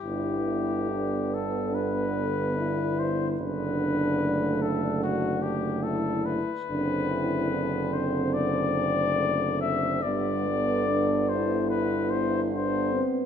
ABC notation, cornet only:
X:1
M:4/4
L:1/8
Q:1/4=72
K:G
V:1 name="Cornet"
G3 A B3 c | B3 A F G A B- | B3 c d3 e | d3 c B c c z |]